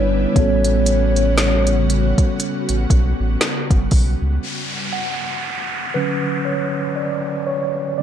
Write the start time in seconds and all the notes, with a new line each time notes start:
Already playing: G1 D3 G3 B3 D4 E4 B4 C#5
0.33 A1 C#3 G3 B3 C#4 F#4, kick, closed hi-hat
0.38 F#4 A4
0.64 closed hi-hat
0.86 closed hi-hat
1.16 closed hi-hat
1.38 snare, closed hi-hat
1.67 closed hi-hat
1.90 closed hi-hat
2.18 kick, closed hi-hat
2.40 closed hi-hat
2.69 A1, closed hi-hat
2.90 B1, kick, closed hi-hat
3.20 A1
3.41 snare
3.70 G1, kick, closed hi-hat
3.91 B1, kick, open hi-hat
4.22 C#2
4.43 downlifter
4.93 F#5
5.94 D3 F#3 C#4 B4
6.45 C#5
6.96 D5
7.47 C#5
7.98 D3 F#3 D5